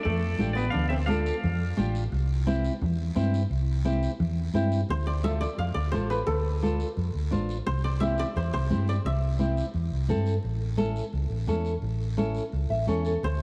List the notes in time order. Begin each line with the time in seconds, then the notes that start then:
Already playing: D4
0.03 F2 A3 A4 D5, high conga, low conga, long guiro
0.39 A1 D4 F4 G4, high conga, short guiro
0.53 B3 B4 D5, short guiro
0.70 D4 D5 F5
0.74 D2, high conga, low conga, long guiro
0.89 C4 E5
0.93 C5
1.06 D4 F4 A4 D5 F5, high conga, short guiro
1.26 short guiro
1.43 F2, high conga, low conga, long guiro
1.77 A1 D4 F4 G4, high conga, short guiro
1.95 short guiro
2.12 C2, high conga, long guiro
2.46 C4 E4 G4, high conga, short guiro
2.64 short guiro
2.81 E2, high conga, low conga, long guiro
3.15 G2 C4 E4 G4, high conga, short guiro
3.34 short guiro
3.50 C2, high conga, long guiro
3.85 C4 E4 G4, high conga, short guiro
4.03 short guiro
4.20 E2, high conga, low conga, long guiro
4.54 G2 C4 E4 G4, high conga, short guiro
4.72 short guiro
4.89 D2 C5, long guiro
5.07 D5
5.23 D4 F4 A4 E5, high conga, short guiro
5.41 D5, short guiro
5.58 F2 F5, high conga, long guiro
5.74 D2 D5
5.92 A1 D4 F4 A4 C5, high conga, short guiro
6.10 B4, short guiro
6.27 D2 A4, high conga, long guiro
6.62 D4 F4 A4, high conga, short guiro
6.80 short guiro
6.97 F2, high conga, long guiro
7.14 D2
7.31 A1 D4 F4 C5, high conga, short guiro
7.49 short guiro
7.67 C2 C5, high conga, long guiro
7.84 D5
8.00 C4 E4 G4 E5, high conga, short guiro
8.18 D5, short guiro
8.36 E2 C5, high conga, long guiro
8.53 C2 C5
8.70 G2 C4 E4 G4, high conga, short guiro
8.88 D5, short guiro
9.04 C2 E5, high conga, long guiro
9.39 C4 E4 G4, high conga, short guiro
9.57 short guiro
9.74 E2, high conga, long guiro
9.92 C2
10.08 G2 C4 E4 A4, high conga, short guiro
10.26 short guiro
10.43 A1, high conga, long guiro
10.77 C#4 E4 A4, high conga, short guiro
10.96 short guiro
11.13 C#2, high conga, long guiro
11.30 A1
11.47 E2 C#4 E4 A4, high conga, short guiro
11.65 short guiro
11.82 A1, high conga, long guiro
12.17 C#4 E4 A4, high conga, short guiro
12.35 short guiro
12.52 C#2, high conga, long guiro
12.70 A1 E5
12.87 E2 C#4 E4 A4 C#5, high conga, short guiro
13.05 A4, short guiro
13.23 D2 C5, high conga, long guiro